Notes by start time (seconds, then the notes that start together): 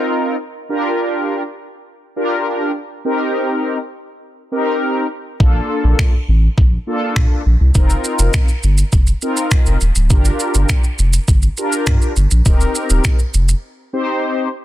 Already playing: C4 D#4 F4 A#4
0.69 D4 F4 G4 A#4
2.16 D4 F4 G4 A#4
3.05 C4 D#4 G4 A#4
4.51 C4 D#4 G4 A#4
5.40 A#1 A#3 D4 F4 A4, kick
5.84 A#1
5.99 finger snap, kick
6.28 A1
6.58 A#1, kick
6.87 A#3 D4 F4 A4
7.16 A#2, finger snap, kick
7.46 A#1
7.60 C2
7.75 F1 C4 D#4 F4 A#4, kick, shaker
7.90 shaker
8.04 shaker
8.19 F1, shaker
8.34 finger snap, kick, shaker
8.49 shaker
8.63 G1, shaker
8.78 shaker
8.93 F1, kick, shaker
9.07 shaker
9.22 C4 D#4 F4 A#4, shaker
9.37 shaker
9.51 finger snap, kick, shaker
9.66 F1, shaker
9.81 D#1, shaker
9.96 D1, shaker
10.10 G1 D4 F4 G4 A#4, kick, shaker
10.25 shaker
10.40 shaker
10.55 G1, shaker
10.69 finger snap, kick, shaker
10.84 shaker
10.99 F1, shaker
11.13 shaker
11.28 G1, kick, shaker
11.43 shaker
11.57 D4 F4 G4 A#4, shaker
11.73 shaker
11.87 G2, finger snap, kick, shaker
12.02 shaker
12.16 G1, shaker
12.31 A#1, shaker
12.46 D#1 C4 D#4 G4 A#4, kick, shaker
12.61 shaker
12.75 shaker
12.90 D#1, shaker
13.04 finger snap, kick, shaker
13.19 shaker
13.34 F1, shaker
13.49 shaker
13.93 C4 D#4 G4 C5